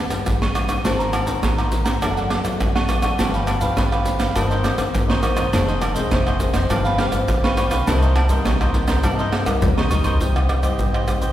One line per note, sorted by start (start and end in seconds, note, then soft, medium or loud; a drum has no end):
0.00 0.23 G2 medium
0.10 0.23 G1 medium
0.10 0.50 G3 medium
0.10 0.50 B3 medium
0.10 0.50 D4 medium
0.10 snare soft
0.10 pandeiro medium
0.10 tamborim medium
0.10 shaker medium
0.10 surdo soft
0.26 0.51 G1 medium
0.26 0.82 D3 medium
0.26 snare soft
0.26 pandeiro loud
0.26 tamborim medium
0.26 shaker medium
0.26 surdo loud
0.42 snare medium
0.42 pandeiro soft
0.42 high agogo medium
0.42 shaker soft
0.54 0.79 G3 medium
0.54 0.80 B3 medium
0.54 0.80 D4 medium
0.54 snare soft
0.54 pandeiro medium
0.54 tamborim medium
0.54 high agogo medium
0.54 shaker medium
0.54 surdo soft
0.68 0.82 G1 medium
0.68 snare soft
0.68 pandeiro medium
0.68 tamborim medium
0.68 high agogo medium
0.68 shaker medium
0.84 1.28 G#1 loud
0.84 1.40 G#2 medium
0.84 1.24 D#3 medium
0.84 1.24 A#3 medium
0.84 1.24 C4 medium
0.84 0.98 G#4 soft
0.84 0.98 C5 medium
0.84 0.98 A#5 medium
0.84 snare medium
0.84 pandeiro medium
0.84 low agogo medium
0.84 shaker medium
0.84 surdo medium
0.99 1.12 C5 medium
0.99 1.13 A#5 medium
0.99 snare soft
0.99 pandeiro soft
0.99 shaker soft
1.13 snare soft
1.13 pandeiro medium
1.13 tamborim loud
1.13 low agogo loud
1.13 shaker medium
1.26 1.40 D#2 medium
1.26 1.42 D#3 medium
1.26 1.67 A#3 medium
1.26 1.67 C4 medium
1.26 1.42 C5 medium
1.26 1.41 A#5 medium
1.26 snare soft
1.26 pandeiro medium
1.26 shaker medium
1.26 surdo soft
1.42 1.80 G#1 medium
1.42 1.70 D#3 medium
1.42 1.56 G#4 soft
1.42 1.57 C5 medium
1.42 1.57 A#5 medium
1.42 snare medium
1.42 pandeiro medium
1.42 high agogo medium
1.42 shaker medium
1.42 surdo loud
1.58 1.85 C5 medium
1.58 1.83 A#5 medium
1.58 snare soft
1.58 pandeiro soft
1.58 tamborim medium
1.58 shaker soft
1.58 surdo soft
1.71 1.89 D#3 medium
1.71 1.89 A#3 medium
1.71 1.90 C4 medium
1.71 snare soft
1.71 pandeiro medium
1.71 shaker medium
1.84 1.99 G#1 loud
1.84 2.00 C5 medium
1.84 1.99 A#5 medium
1.84 snare medium
1.84 pandeiro medium
1.84 tamborim medium
1.84 shaker medium
1.84 surdo soft
2.01 2.39 F#1 loud
2.01 2.57 F#2 medium
2.01 2.41 F#3 medium
2.01 2.41 A3 medium
2.01 2.15 D4 medium
2.01 2.41 D4 medium
2.01 2.15 A4 medium
2.01 2.16 D5 medium
2.01 2.15 F#5 medium
2.01 snare soft
2.01 pandeiro medium
2.01 tamborim loud
2.01 low agogo medium
2.01 shaker medium
2.01 surdo medium
2.16 2.29 A4 medium
2.16 2.29 D5 medium
2.16 2.30 F#5 medium
2.16 snare soft
2.16 pandeiro soft
2.16 shaker soft
2.29 2.42 D4 medium
2.29 2.43 A4 medium
2.29 2.43 D5 medium
2.29 2.44 F#5 medium
2.29 snare medium
2.29 pandeiro medium
2.29 tamborim medium
2.44 2.57 F#1 medium
2.44 2.84 F#3 medium
2.44 2.84 A3 medium
2.44 2.84 D4 medium
2.44 muted cavaquinho stroke soft
2.44 snare soft
2.44 pandeiro medium
2.44 tamborim medium
2.44 shaker medium
2.44 surdo soft
2.60 2.85 F#1 medium
2.60 3.16 F#2 soft
2.60 snare soft
2.60 pandeiro medium
2.60 tamborim medium
2.60 shaker medium
2.60 surdo loud
2.75 2.88 A4 medium
2.75 2.89 D5 medium
2.75 2.89 F#5 medium
2.75 snare medium
2.75 pandeiro soft
2.75 high agogo medium
2.75 shaker soft
2.89 3.14 F#3 medium
2.89 3.14 A3 medium
2.89 3.03 D4 medium
2.89 3.14 D4 medium
2.89 3.03 A4 medium
2.89 3.03 D5 medium
2.89 3.01 F#5 medium
2.89 snare soft
2.89 pandeiro medium
2.89 tamborim medium
2.89 high agogo medium
2.89 shaker medium
2.89 surdo soft
3.02 3.16 A1 medium
3.02 3.18 A4 medium
3.02 3.17 D5 medium
3.02 3.17 F#5 medium
3.02 snare soft
3.02 pandeiro medium
3.02 tamborim medium
3.02 high agogo loud
3.02 shaker medium
3.18 3.63 G1 loud
3.18 3.75 G2 medium
3.18 3.58 F3 medium
3.18 3.59 B3 medium
3.18 3.32 D4 medium
3.18 3.59 D4 medium
3.18 3.33 G4 medium
3.18 3.33 B4 medium
3.18 3.32 F5 medium
3.18 snare medium
3.18 pandeiro medium
3.18 low agogo medium
3.18 shaker medium
3.18 surdo medium
3.33 3.46 G4 medium
3.33 3.46 B4 medium
3.33 3.47 F5 medium
3.33 snare soft
3.33 pandeiro soft
3.33 shaker soft
3.47 muted cavaquinho stroke soft
3.47 snare soft
3.47 pandeiro medium
3.47 tamborim medium
3.47 low agogo medium
3.47 shaker medium
3.60 3.74 D2 medium
3.60 4.01 F3 medium
3.60 4.01 B3 medium
3.60 4.02 D4 medium
3.60 3.76 G4 medium
3.60 3.76 B4 medium
3.60 3.75 F5 medium
3.60 snare soft
3.60 pandeiro medium
3.60 shaker medium
3.60 surdo soft
3.77 4.15 G1 loud
3.77 4.33 D3 medium
3.77 3.90 D4 medium
3.77 3.91 G4 soft
3.77 3.91 B4 medium
3.77 3.90 F5 medium
3.77 snare medium
3.77 pandeiro medium
3.77 high agogo medium
3.77 shaker medium
3.77 surdo loud
3.91 4.20 G4 medium
3.91 4.18 B4 medium
3.91 4.17 F5 medium
3.91 snare soft
3.91 pandeiro soft
3.91 tamborim medium
3.91 shaker soft
3.91 surdo soft
4.05 4.23 F3 medium
4.05 4.23 B3 medium
4.05 4.24 D4 medium
4.05 snare soft
4.05 pandeiro medium
4.05 shaker medium
4.19 4.33 G1 loud
4.19 4.34 G4 medium
4.19 4.34 B4 medium
4.19 4.33 F5 medium
4.19 snare medium
4.19 pandeiro medium
4.19 tamborim medium
4.19 shaker medium
4.19 surdo soft
4.35 4.73 G1 loud
4.35 4.91 G2 medium
4.35 4.75 D#3 medium
4.35 4.75 A#3 medium
4.35 4.75 C4 medium
4.35 4.49 D#4 medium
4.35 4.49 A#4 medium
4.35 4.49 C5 medium
4.35 4.49 D#5 medium
4.35 snare soft
4.35 pandeiro medium
4.35 tamborim medium
4.35 low agogo medium
4.35 shaker medium
4.35 surdo medium
4.50 4.63 A#4 medium
4.50 4.64 C5 medium
4.50 4.64 D#5 medium
4.50 snare soft
4.50 pandeiro soft
4.50 shaker soft
4.63 4.76 D#4 medium
4.63 4.76 A#4 medium
4.63 4.77 C5 medium
4.63 4.77 D#5 medium
4.63 snare medium
4.63 pandeiro medium
4.63 tamborim medium
4.63 shaker medium
4.77 4.91 G1 medium
4.77 5.18 D#3 medium
4.77 5.18 A#3 medium
4.77 5.18 C4 medium
4.77 muted cavaquinho stroke soft
4.77 snare soft
4.77 pandeiro medium
4.77 tamborim medium
4.77 shaker medium
4.77 surdo soft
4.94 5.19 G1 medium
4.94 5.50 G2 medium
4.94 snare soft
4.94 pandeiro medium
4.94 tamborim medium
4.94 shaker medium
4.94 surdo loud
5.08 5.21 A#4 medium
5.08 5.22 C5 medium
5.08 5.22 D#5 medium
5.08 snare medium
5.08 pandeiro soft
5.08 high agogo medium
5.08 shaker soft
5.22 5.48 D#3 medium
5.22 5.48 A#3 medium
5.22 5.48 C4 medium
5.22 5.36 D#4 medium
5.22 5.36 A#4 medium
5.22 5.35 C5 medium
5.22 5.34 D#5 medium
5.22 snare soft
5.22 pandeiro medium
5.22 tamborim medium
5.22 high agogo medium
5.22 shaker medium
5.35 5.50 E1 loud
5.35 5.51 A#4 medium
5.35 5.51 C5 medium
5.35 5.50 D#5 medium
5.35 snare soft
5.35 pandeiro medium
5.35 tamborim medium
5.35 high agogo medium
5.35 shaker medium
5.52 5.97 F1 loud
5.52 6.08 F2 medium
5.52 5.92 D#3 medium
5.52 5.92 G#3 medium
5.52 5.92 C4 medium
5.52 5.66 F4 medium
5.52 5.66 G#4 medium
5.52 5.67 C5 medium
5.52 5.66 D#5 medium
5.52 snare medium
5.52 pandeiro medium
5.52 low agogo medium
5.52 shaker medium
5.52 surdo medium
5.67 5.80 G#4 medium
5.67 5.80 C5 medium
5.67 5.80 D#5 medium
5.67 snare soft
5.67 pandeiro soft
5.67 shaker soft
5.81 muted cavaquinho stroke soft
5.81 snare soft
5.81 pandeiro medium
5.81 tamborim medium
5.81 low agogo medium
5.81 shaker medium
5.94 6.08 C2 medium
5.94 6.35 D#3 medium
5.94 6.36 G#3 medium
5.94 6.36 C4 medium
5.94 6.10 G#4 medium
5.94 6.09 C5 medium
5.94 6.09 D#5 medium
5.94 snare soft
5.94 pandeiro medium
5.94 shaker medium
5.94 surdo soft
6.11 6.49 F1 loud
6.11 6.67 C3 medium
6.11 6.24 F4 medium
6.11 6.25 G#4 medium
6.11 6.25 C5 medium
6.11 6.25 D#5 medium
6.11 snare medium
6.11 pandeiro medium
6.11 high agogo medium
6.11 shaker medium
6.11 surdo loud
6.26 6.54 G#4 medium
6.26 6.53 C5 medium
6.26 6.52 D#5 medium
6.26 snare soft
6.26 pandeiro soft
6.26 tamborim medium
6.26 shaker soft
6.26 surdo soft
6.40 6.65 D#3 medium
6.40 6.65 G#3 medium
6.40 6.65 C4 medium
6.40 snare soft
6.40 pandeiro medium
6.40 shaker medium
6.53 6.67 F1 loud
6.53 6.69 G#4 medium
6.53 6.68 C5 medium
6.53 6.68 D#5 medium
6.53 snare medium
6.53 pandeiro medium
6.53 tamborim medium
6.53 shaker medium
6.53 surdo soft
6.69 7.07 G1 loud
6.69 7.25 G2 medium
6.69 6.97 F3 medium
6.69 6.97 B3 medium
6.69 6.83 D4 medium
6.69 6.98 D4 medium
6.69 6.83 G4 medium
6.69 6.84 B4 medium
6.69 6.83 F5 medium
6.69 snare soft
6.69 pandeiro medium
6.69 tamborim medium
6.69 low agogo medium
6.69 shaker loud
6.69 surdo medium
6.84 6.98 G4 medium
6.84 6.98 B4 medium
6.84 6.98 F5 medium
6.84 snare soft
6.84 pandeiro soft
6.84 shaker soft
6.98 7.11 D4 medium
6.98 7.11 G4 medium
6.98 7.12 B4 medium
6.98 7.12 F5 medium
6.98 snare medium
6.98 pandeiro medium
6.98 tamborim medium
7.12 7.25 G1 loud
7.12 7.52 F3 medium
7.12 7.52 B3 medium
7.12 7.53 D4 medium
7.12 muted cavaquinho stroke soft
7.12 snare soft
7.12 pandeiro medium
7.12 tamborim medium
7.12 shaker medium
7.12 surdo soft
7.28 7.53 G1 medium
7.28 7.84 D3 medium
7.28 snare soft
7.28 pandeiro medium
7.28 tamborim loud
7.28 shaker medium
7.28 surdo loud
7.43 7.57 G4 medium
7.43 7.57 B4 medium
7.43 7.57 F5 medium
7.43 snare medium
7.43 pandeiro soft
7.43 high agogo medium
7.43 shaker soft
7.56 7.81 F3 medium
7.56 7.82 B3 medium
7.56 7.71 D4 medium
7.56 7.82 D4 medium
7.56 7.71 G4 medium
7.56 7.71 B4 medium
7.56 7.69 F5 medium
7.56 snare soft
7.56 pandeiro medium
7.56 tamborim medium
7.56 high agogo medium
7.56 shaker medium
7.71 7.84 B1 loud
7.71 7.86 G4 medium
7.71 7.85 B4 medium
7.71 7.85 F5 medium
7.71 snare soft
7.71 pandeiro medium
7.71 tamborim medium
7.71 high agogo medium
7.71 shaker loud
7.87 8.31 C2 loud
7.87 8.42 C3 medium
7.87 8.26 G3 medium
7.87 8.26 A#3 medium
7.87 8.00 D#4 soft
7.87 8.26 D#4 medium
7.87 8.01 A#4 medium
7.87 8.01 C5 medium
7.87 8.00 D#5 medium
7.87 snare medium
7.87 pandeiro medium
7.87 low agogo medium
7.87 shaker loud
7.87 surdo medium
8.02 8.14 A#4 medium
8.02 8.15 C5 medium
8.02 8.15 D#5 medium
8.02 snare soft
8.02 pandeiro soft
8.02 shaker soft
8.15 muted cavaquinho stroke soft
8.15 snare soft
8.15 pandeiro medium
8.15 tamborim medium
8.15 low agogo medium
8.29 8.42 G2 medium
8.29 8.69 G3 medium
8.29 8.69 A#3 medium
8.29 8.69 D#4 medium
8.29 8.44 A#4 medium
8.29 8.44 C5 medium
8.29 8.43 D#5 medium
8.29 snare soft
8.29 pandeiro medium
8.29 shaker medium
8.29 surdo soft
8.45 9.01 G2 medium
8.45 8.59 D#4 medium
8.45 8.59 A#4 medium
8.45 8.59 C5 medium
8.45 8.59 D#5 medium
8.45 snare medium
8.45 pandeiro medium
8.45 high agogo medium
8.45 shaker medium
8.45 surdo loud
8.60 8.88 A#4 medium
8.60 8.87 C5 medium
8.60 8.86 D#5 medium
8.60 snare soft
8.60 pandeiro soft
8.60 tamborim medium
8.60 shaker soft
8.60 surdo soft
8.74 8.92 G3 medium
8.74 8.92 A#3 medium
8.74 8.92 D#4 medium
8.74 snare soft
8.74 pandeiro medium
8.87 9.00 C2 loud
8.87 9.03 A#4 medium
8.87 9.02 C5 medium
8.87 9.02 D#5 medium
8.87 snare medium
8.87 pandeiro medium
8.87 tamborim medium
8.87 shaker medium
8.87 surdo soft
9.04 9.41 G2 loud
9.04 9.59 C3 medium
9.04 9.31 G3 medium
9.04 9.31 A#3 medium
9.04 9.17 D#4 medium
9.04 9.32 D#4 medium
9.04 9.18 A#4 medium
9.04 9.18 C5 medium
9.04 9.18 D#5 medium
9.04 snare soft
9.04 pandeiro medium
9.04 tamborim medium
9.04 low agogo loud
9.04 shaker medium
9.04 surdo medium
9.19 9.31 A#4 medium
9.19 9.32 C5 medium
9.19 9.32 D#5 medium
9.19 snare soft
9.19 pandeiro soft
9.19 shaker soft
9.32 9.45 D#4 medium
9.32 9.45 A#4 medium
9.32 9.45 C5 medium
9.32 9.46 D#5 medium
9.32 snare medium
9.32 pandeiro medium
9.32 tamborim medium
9.46 9.59 C2 medium
9.46 9.86 G3 medium
9.46 9.86 A#3 medium
9.46 9.86 D#4 medium
9.46 muted cavaquinho stroke soft
9.46 snare soft
9.46 pandeiro medium
9.46 tamborim medium
9.46 shaker medium
9.46 surdo soft
9.62 9.75 C2 medium
9.62 10.18 G2 soft
9.62 snare soft
9.62 surdo loud
9.62 pandeiro loud
9.62 shaker loud
9.62 surdo loud
9.77 9.91 D#2 medium
9.77 9.90 A#4 medium
9.77 9.90 C5 medium
9.77 9.91 D#5 medium
9.77 snare medium
9.77 surdo medium
9.77 pandeiro soft
9.77 high agogo medium
9.77 shaker soft
9.90 10.04 D2 loud
9.90 10.16 G3 medium
9.90 10.16 A#3 medium
9.90 10.04 D#4 medium
9.90 10.16 D#4 medium
9.90 10.05 A#4 medium
9.90 10.04 C5 medium
9.90 10.03 D#5 medium
9.90 snare soft
9.90 surdo medium
9.90 pandeiro medium
9.90 high agogo loud
9.90 shaker medium
10.04 10.18 C2 medium
10.04 10.20 A#4 medium
10.04 10.19 C5 medium
10.04 10.19 D#5 medium
10.04 snare soft
10.04 pandeiro medium
10.04 high agogo medium
10.04 shaker medium
10.04 surdo medium
10.20 10.65 C2 loud
10.20 10.77 C3 medium
10.20 10.60 G3 soft
10.20 10.61 C4 medium
10.20 10.34 D#4 soft
10.20 10.61 D#4 medium
10.20 10.34 G4 soft
10.20 10.35 C5 medium
10.20 10.34 D#5 medium
10.20 pandeiro medium
10.20 shaker medium
10.20 surdo medium
10.36 10.48 G4 medium
10.36 10.49 C5 medium
10.36 10.49 D#5 medium
10.36 pandeiro soft
10.36 tamborim medium
10.36 shaker soft
10.49 muted cavaquinho stroke soft
10.49 pandeiro medium
10.49 tamborim medium
10.63 10.77 G2 medium
10.63 11.03 G3 medium
10.63 11.03 C4 medium
10.63 11.04 D#4 medium
10.63 10.78 G4 medium
10.63 10.78 C5 medium
10.63 10.77 D#5 medium
10.63 pandeiro medium
10.63 tamborim medium
10.63 shaker medium
10.63 surdo soft
10.79 11.17 C2 medium
10.79 11.32 G2 medium
10.79 10.93 D#4 soft
10.79 10.93 G4 medium
10.79 10.93 C5 soft
10.79 10.93 D#5 medium
10.79 pandeiro medium
10.79 shaker medium
10.79 surdo loud
10.94 11.22 G4 medium
10.94 11.21 C5 medium
10.94 11.20 D#5 medium
10.94 pandeiro soft
10.94 tamborim medium
10.94 shaker soft
11.08 11.26 G3 medium
11.08 11.26 C4 medium
11.08 11.26 D#4 medium
11.08 pandeiro medium
11.08 tamborim medium
11.08 shaker medium
11.08 surdo soft
11.21 11.32 C2 medium
11.21 11.32 G4 medium
11.21 11.32 C5 medium
11.21 11.32 D#5 medium
11.21 pandeiro medium
11.21 shaker medium
11.21 surdo soft